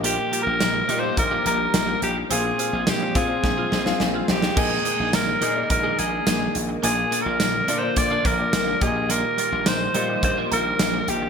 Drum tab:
CC |----------------|----------------|x---------------|----------------|
HH |x-x-x-x-x-x-x-x-|x-x-x-x---------|--x-x-x-x-x-x-x-|x-x-x-x-x-x-x-x-|
TB |----x-------x---|----x-----------|----x-------x---|----x-------x---|
SD |----o-------o---|----o---o-ooo-oo|----o-------o---|----o-------o---|
BD |--------o-------|------o-o-------|o-------o-------|--------o-o---o-|

CC |----------------|
HH |x-x-x-x-x-x-x-x-|
TB |----x-------x---|
SD |----o-------o---|
BD |--------o-------|